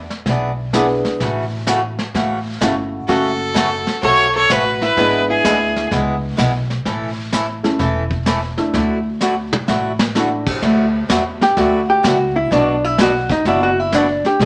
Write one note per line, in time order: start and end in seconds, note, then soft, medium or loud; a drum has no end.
0.10 snare soft
0.26 1.01 B1 medium
0.26 0.50 E3 medium
0.26 0.50 B3 medium
0.26 0.50 D4 medium
0.26 0.50 G#4 medium
0.26 brush sweep soft
0.26 kick soft
0.26 snare soft
0.73 0.86 E3 medium
0.73 1.20 B3 medium
0.73 0.86 B3 medium
0.73 1.20 D4 medium
0.73 0.86 D4 medium
0.73 1.20 E4 medium
0.73 1.21 G#4 medium
0.73 0.86 G#4 medium
0.73 kick soft
0.73 snare medium
0.73 hi-hat pedal medium
1.05 snare soft
1.20 1.96 A1 medium
1.20 1.43 C#3 medium
1.20 1.44 E3 medium
1.20 1.44 A3 medium
1.20 1.44 C#4 soft
1.20 1.44 F#4 medium
1.20 brush sweep soft
1.20 kick soft
1.20 snare soft
1.67 1.79 C#3 medium
1.67 1.79 E3 medium
1.67 1.80 A3 medium
1.67 1.80 C#4 medium
1.67 1.80 F#4 medium
1.67 kick soft
1.67 snare medium
1.67 hi-hat pedal medium
1.99 snare soft
2.14 2.54 A1 medium
2.14 2.37 C#3 medium
2.14 2.38 E3 medium
2.14 2.38 A3 medium
2.14 2.38 C#4 medium
2.14 2.38 F#4 medium
2.14 brush sweep medium
2.14 kick soft
2.14 snare soft
2.61 3.01 G1 medium
2.61 2.73 C#3 medium
2.61 2.73 E3 medium
2.61 3.07 A3 medium
2.61 2.73 A3 medium
2.61 2.74 C#4 medium
2.61 3.07 C#4 soft
2.61 3.09 E4 medium
2.61 2.74 F#4 medium
2.61 3.07 F#4 medium
2.61 kick soft
2.61 snare medium
2.61 hi-hat pedal medium
3.08 3.84 F#1 medium
3.08 3.31 C#3 medium
3.08 3.31 F#3 medium
3.08 3.31 A3 medium
3.08 4.41 A3 medium
3.08 3.31 C#4 medium
3.08 4.41 C#4 medium
3.08 3.31 F#4 medium
3.08 4.41 F#4 medium
3.08 3.99 F#4 medium
3.08 3.98 A4 loud
3.08 4.41 A4 medium
3.08 brush sweep medium
3.08 kick soft
3.08 snare soft
3.54 3.67 C#3 medium
3.54 3.67 F#3 medium
3.54 3.67 A3 medium
3.54 3.68 C#4 medium
3.54 3.68 F#4 medium
3.54 kick soft
3.54 snare medium
3.54 hi-hat pedal medium
3.87 snare soft
4.02 4.43 B1 medium
4.02 4.25 C#3 medium
4.02 4.26 F#3 medium
4.02 4.26 A3 medium
4.02 4.26 C#4 medium
4.02 4.26 F#4 medium
4.02 4.33 A4 medium
4.02 4.32 C#5 medium
4.02 brush sweep soft
4.02 kick soft
4.02 snare soft
4.35 4.51 A4 medium
4.35 4.53 C#5 medium
4.50 4.90 A1 medium
4.50 4.62 C#3 medium
4.50 4.62 F#3 medium
4.50 4.62 A3 medium
4.50 4.62 C#4 medium
4.50 4.62 F#4 medium
4.50 4.82 F#4 medium
4.50 4.82 B4 loud
4.50 kick soft
4.50 snare medium
4.50 hi-hat pedal medium
4.82 5.26 E4 medium
4.82 5.27 B4 medium
4.82 snare soft
4.96 5.35 G#1 medium
4.96 5.20 D3 soft
4.96 5.21 G#3 medium
4.96 6.29 B3 medium
4.96 5.21 B3 medium
4.96 6.29 D4 medium
4.96 6.29 E4 medium
4.96 5.21 E4 medium
4.96 6.29 G#4 medium
4.96 5.21 G#4 medium
4.96 brush sweep soft
4.96 kick soft
4.96 snare soft
5.30 5.88 E4 medium
5.30 5.88 G#4 medium
5.44 5.84 D2 medium
5.44 5.57 D3 medium
5.44 5.56 G#3 medium
5.44 5.57 B3 medium
5.44 5.57 E4 medium
5.44 5.57 G#4 medium
5.44 kick soft
5.44 snare medium
5.44 hi-hat pedal medium
5.76 snare soft
5.91 6.31 C#2 medium
5.91 6.14 D3 medium
5.91 6.14 G#3 medium
5.91 6.15 B3 medium
5.91 6.14 E4 medium
5.91 6.15 G#4 medium
5.91 brush sweep soft
5.91 kick soft
5.91 snare soft
6.37 6.78 B1 medium
6.37 6.50 D3 medium
6.37 6.50 G#3 medium
6.37 6.50 B3 medium
6.37 6.50 E4 medium
6.37 6.51 G#4 medium
6.37 kick soft
6.37 snare medium
6.37 hi-hat pedal medium
6.70 snare soft
6.85 7.61 A1 medium
6.85 7.09 E3 medium
6.85 7.09 A3 medium
6.85 7.09 C#4 medium
6.85 7.09 E4 medium
6.85 7.09 A4 medium
6.85 brush sweep medium
6.85 kick soft
6.85 snare soft
7.32 7.45 E3 medium
7.32 7.45 A3 medium
7.32 7.45 C#4 medium
7.32 7.46 E4 medium
7.32 7.46 A4 medium
7.32 kick soft
7.32 snare medium
7.32 hi-hat pedal medium
7.63 7.78 A3 medium
7.63 7.78 C#4 medium
7.63 7.78 E4 medium
7.63 7.78 A4 medium
7.63 snare soft
7.79 8.55 E1 medium
7.79 8.02 E3 medium
7.79 8.03 A3 medium
7.79 8.03 C#4 medium
7.79 8.03 E4 medium
7.79 8.03 A4 medium
7.79 brush sweep soft
7.79 kick soft
7.79 snare soft
8.11 kick medium
8.26 8.39 E3 medium
8.26 8.39 A3 medium
8.26 8.39 C#4 medium
8.26 8.39 E4 medium
8.26 8.39 A4 medium
8.26 kick soft
8.26 snare medium
8.26 hi-hat pedal medium
8.57 8.72 A3 medium
8.57 8.72 D4 medium
8.57 8.72 E4 medium
8.57 8.72 A4 medium
8.57 snare soft
8.74 9.49 D2 medium
8.74 8.97 D3 medium
8.74 8.97 F#3 medium
8.74 8.97 A3 medium
8.74 8.97 E4 medium
8.74 8.98 F#4 medium
8.74 brush sweep soft
8.74 kick soft
8.74 snare soft
9.21 9.33 D3 medium
9.21 9.34 F#3 medium
9.21 9.34 A3 medium
9.21 9.34 E4 medium
9.21 9.34 F#4 medium
9.21 snare soft
9.21 hi-hat pedal medium
9.53 mid tom medium
9.67 10.44 A1 medium
9.67 9.91 D3 medium
9.67 9.91 F#3 medium
9.67 9.91 A3 medium
9.67 9.91 E4 medium
9.67 9.91 F#4 medium
9.67 snare medium
9.99 snare medium
10.15 10.28 D3 medium
10.15 10.28 F#3 medium
10.15 10.44 A3 medium
10.15 10.28 A3 medium
10.15 10.44 D4 medium
10.15 10.44 E4 medium
10.15 10.28 E4 medium
10.15 10.44 F#4 medium
10.15 10.28 F#4 medium
10.15 snare medium
10.15 hi-hat pedal medium
10.47 kick medium
10.47 crash medium
10.62 11.00 D2 medium
10.62 10.85 D3 medium
10.62 10.85 F#3 medium
10.62 10.85 A3 medium
10.62 10.85 E4 medium
10.62 10.86 F#4 medium
10.62 brush sweep soft
10.62 kick soft
10.62 snare soft
11.09 11.50 E2 medium
11.09 11.21 D3 medium
11.09 11.22 F#3 medium
11.09 11.22 A3 medium
11.09 11.22 E4 medium
11.09 11.22 F#4 medium
11.09 kick soft
11.09 snare medium
11.09 hi-hat pedal medium
11.41 11.59 G4 medium
11.41 snare soft
11.57 11.97 D2 medium
11.57 11.79 D3 medium
11.57 11.80 F#3 medium
11.57 11.80 A3 medium
11.57 11.80 E4 medium
11.57 11.80 F#4 medium
11.57 11.89 F#4 medium
11.57 brush sweep soft
11.57 kick soft
11.57 snare soft
11.90 12.07 G4 medium
12.03 12.44 C#2 medium
12.03 12.16 D3 medium
12.03 12.16 F#3 medium
12.03 12.16 A3 medium
12.03 12.16 E4 medium
12.03 12.16 F#4 medium
12.03 12.36 F#4 medium
12.03 kick soft
12.03 snare medium
12.03 hi-hat pedal medium
12.36 12.51 E4 medium
12.51 13.26 B1 medium
12.51 12.74 B2 medium
12.51 12.74 F#3 medium
12.51 12.74 B3 medium
12.51 12.74 D4 medium
12.51 12.84 D4 medium
12.51 12.74 F#4 medium
12.51 brush sweep medium
12.51 kick soft
12.51 snare soft
12.84 12.99 E4 medium
12.98 13.10 B2 medium
12.98 13.11 F#3 medium
12.98 13.11 B3 medium
12.98 13.11 D4 medium
12.98 13.11 F#4 medium
12.98 13.30 F#4 medium
12.98 kick soft
12.98 snare medium
12.98 hi-hat pedal medium
13.30 13.46 D#4 medium
13.30 kick medium
13.30 snare soft
13.45 14.20 F#1 medium
13.45 13.68 B2 medium
13.45 13.68 F#3 medium
13.45 13.68 B3 medium
13.45 13.69 D4 medium
13.45 13.62 E4 medium
13.45 13.69 F#4 medium
13.45 brush sweep soft
13.45 kick soft
13.45 snare soft
13.63 13.80 F#4 medium
13.80 13.93 E4 medium
13.92 14.05 B2 medium
13.92 14.05 F#3 medium
13.92 14.05 B3 medium
13.92 14.06 D4 medium
13.92 14.24 D4 medium
13.92 14.06 F#4 medium
13.92 kick soft
13.92 snare medium
13.92 hi-hat pedal medium
14.25 14.40 G4 medium
14.25 snare soft
14.40 14.45 B1 medium
14.40 14.45 B2 medium
14.40 14.45 E3 medium
14.40 14.45 B3 medium
14.40 brush sweep soft
14.40 kick soft
14.40 snare soft